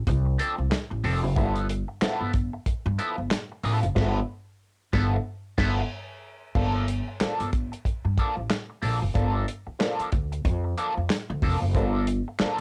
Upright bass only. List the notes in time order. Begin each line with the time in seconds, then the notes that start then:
0.07 C2
0.58 C2
0.91 A1
1.04 F1
1.23 F#1
1.37 G1
2.01 muted upright bass stroke
2.21 G1
2.66 muted upright bass stroke
2.86 G2
3.18 G1
3.64 A1
3.83 F#1
3.96 G1
4.93 G1
5.58 G1
6.55 G1
7.20 muted upright bass stroke
7.40 G1
7.85 muted upright bass stroke
8.05 G2
8.37 A1
8.83 A#1
9.02 F#1
9.15 G1
9.67 muted upright bass stroke
10.00 muted upright bass stroke
10.13 D2
10.45 F2
10.97 F2
11.30 D2
11.43 F1
11.62 F#1
11.75 G1
12.40 muted upright bass stroke